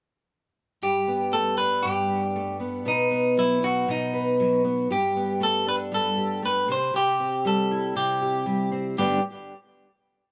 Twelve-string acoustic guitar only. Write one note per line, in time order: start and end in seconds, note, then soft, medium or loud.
0.82 1.83 G2 medium
0.82 2.08 G4 soft
1.08 2.59 B3 soft
1.33 2.34 A3 medium
1.59 2.91 D4 soft
1.84 2.85 G2 medium
2.09 2.85 G4 medium
2.36 2.91 A3 medium
2.60 3.10 B3 medium
2.85 3.87 B2 medium
2.85 4.13 B4 soft
3.11 4.64 B3 soft
3.37 4.39 F#3 medium
3.62 4.95 D#4 medium
3.88 4.90 B2 medium
4.14 4.90 B4 medium
4.40 4.95 F#3 medium
4.64 4.95 B3 medium
4.90 5.91 G2 medium
4.90 6.17 G4 medium
5.16 6.74 B3 medium
5.40 6.41 A3 medium
5.66 6.74 D4 medium
5.92 6.73 G2 medium
6.18 6.93 G4 medium
6.42 6.73 A3 medium
6.68 6.92 C3 medium
6.93 7.94 C3 medium
6.93 8.21 G4 medium
7.20 8.70 C4 medium
7.45 8.45 G3 medium
7.71 8.99 E4 medium
7.95 8.97 C3 medium
8.22 8.99 G4 medium
8.46 8.98 G3 medium
8.72 8.98 C4 medium
8.97 9.18 G2 medium
8.97 9.18 D3 medium
8.97 9.18 A3 medium
8.97 9.19 B3 medium
8.97 9.19 D4 medium
8.97 9.19 G4 medium